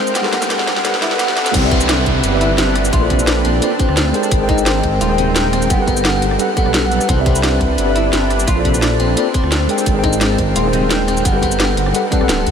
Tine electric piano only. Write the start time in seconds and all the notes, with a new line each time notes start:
Already playing: G#3 G#4 A#4 C5 G5
0.21 G3 G4 A4
0.26 B4 F#5
0.83 G3 G4 A4 B4 F#5
1.00 G3 G4 A4 B4 F#5
1.08 G3 G4 A4
1.13 B4 F#5
1.60 C4 G4 B4
1.65 D5 E5
2.30 C4 G4 B4
2.34 D5 E5
2.99 A#3 F4 A4
3.03 C5 D5
3.61 A#3 F4 A4 C5 D5
4.12 G#3 G#4 A#4 C5 G5
4.38 G#3 G#4 A#4
4.42 C5 G5
5.07 G#3 G#4 A#4
5.12 C5 G5
5.76 G3 G4 A4
5.81 B4 F#5
6.38 G3 G4 A4 B4 F#5
6.56 G3 G4 A4 B4 F#5
6.63 G3 G4 A4
6.67 B4 F#5
7.15 C4 G4 B4
7.19 D5 E5
7.84 C4 G4 B4
7.89 D5 E5
8.54 A#3 F4 A4
8.58 C5 D5
9.16 A#3 F4 A4 C5 D5
9.68 G#3 G#4 A#4 C5 G5
9.93 G#3 G#4 A#4
9.97 C5 G5
10.62 G#3 G#4 A#4
10.67 C5 G5
11.32 G3 G4 A4
11.36 B4 F#5
11.93 G3 G4 A4 B4 F#5
12.10 G3 G4 A4 B4 F#5
12.18 G3 G4 A4
12.22 B4 F#5